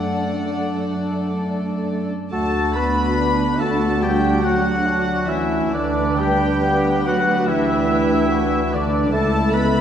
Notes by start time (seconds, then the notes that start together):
Already playing: F#2 A3 D4 A4 D5 F#5
2.31 D2 A3 D4 F#4 A4 A5 A6
2.75 B3 B4 B5
3.20 D4
3.60 A3 F#4 A4 A5 A6
4.02 G3 G4 G5 G6
4.43 F#3 F#4 F#5 F#6
4.86 D4
5.26 E3 C#4 E4 E5 E6
5.72 D2 D3 D4 B4 D5 D6
6.18 G3 G4 G5 G6
6.63 B3
7.05 F#3 F#4 F#5 F#6
7.48 E3 E4 G4 E5 E6
8.31 F#4
8.73 D3 D4 D5 D6
9.12 C#2 A3 E4 A4 A5 A6
9.53 B3 B4 B5